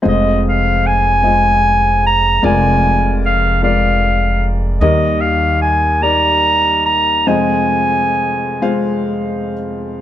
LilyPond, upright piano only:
<<
  \new Staff \with { instrumentName = "Upright piano" } { \time 6/8 \key f \dorian \tempo 4. = 50 <aes f' c'' ees''>4 r8 <aes f' c'' ees''>4 r8 | <aes f' bes' d''>4 r8 <aes f' bes' d''>4 r8 | <g ees' bes' ees''>4 r8 <g ees' bes' d''>4 r8 | <aes f' c'' ees''>4 r8 <aes f' c'' f''>4 r8 | }
  \new Staff \with { instrumentName = "Upright piano" } { \clef bass \time 6/8 \key f \dorian <f,, f,>2. | <f,, f,>2. | <ees, ees>2. | <f,, f,>2. | }
>>